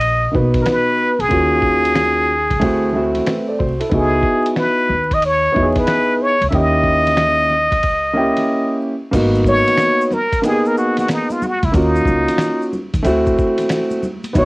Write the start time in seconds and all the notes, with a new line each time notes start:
Already playing: A#1 D#5
0.01 ride
0.32 B1 A#3 D#4 F#4 B4, kick
0.38 B3
0.54 kick, snare, ride
0.62 A#4
0.66 B4, snare, hi-hat pedal, ride
1.19 C#2 G#4, ride
1.29 D#2 A#3 C#4 F4, kick, ride
1.33 F#4
1.62 kick
1.85 ride
1.95 snare, hi-hat pedal, ride
2.50 C#2, kick, ride
2.60 D2 A3 C4 E4 F#4, kick, ride
2.93 A3 C4 E4 F#4
3.15 snare, ride
3.27 B4 E5, snare, hi-hat pedal, ride
3.48 A4 D5
3.59 C2 F#4 C5, kick
3.80 E4 A4, ride
3.89 C#2 B3 D#4 E4, kick, ride
3.93 F#4 G#4
4.23 kick
4.46 ride
4.56 B4, snare, hi-hat pedal, ride
4.89 D#2
5.11 D#5, kick, ride
5.22 C#5, ride
5.52 E2 B3 D#4 E4 F#4, kick
5.62 G#4
5.76 B4, kick, snare, ride
5.87 snare, hi-hat pedal, ride
6.22 C#5
6.41 C#2, ride
6.49 D#2 A#3 C#4 E4 E5, kick, ride
6.54 G4 D#5
6.84 kick
7.07 snare, ride
7.17 snare, hi-hat pedal, ride
7.50 snare
7.71 C#2, kick, snare, ride
7.83 kick, ride
8.13 A#3 C#4 E4 G4
8.37 snare, ride
9.11 G#1 A#3 B3 D#4 F#4, kick, crash, ride, maracas
9.35 maracas
9.44 kick, low conga, maracas
9.48 C#5
9.67 snare, ride, maracas
9.77 snare, hi-hat pedal, ride, maracas
10.01 maracas
10.11 A#4, snare, low conga, maracas
10.33 kick, ride, maracas
10.42 A#3 B3 D#4 G4 G#4, ride, maracas
10.52 G#4
10.65 A#4, maracas
10.77 F#4, maracas
10.97 F#4, snare, ride, high conga, maracas
11.08 D#4, snare, hi-hat pedal, ride, maracas
11.30 F4, high conga, maracas
11.42 F#4, high conga, low conga, maracas
11.63 C#2 E4, kick, ride, high conga, maracas
11.72 D#2 A#3 C#4 D#4 F4 F#4, kick, ride, maracas
11.96 maracas
12.05 C#2, kick, low conga, maracas
12.28 snare, ride, maracas
12.38 snare, hi-hat pedal, ride, maracas
12.62 maracas
12.73 low conga, maracas
12.94 D#2, kick, ride, maracas
13.03 D2 A3 C4 E4 F#4, ride, maracas
13.26 kick, maracas
13.38 kick, maracas
13.58 snare, ride, high conga, maracas
13.69 snare, hi-hat pedal, ride, maracas
13.91 high conga, maracas
14.03 high conga, low conga, maracas
14.24 ride, high conga, maracas
14.33 C#2 B3 D#4 E4 F#4, kick, ride, maracas
14.39 C#5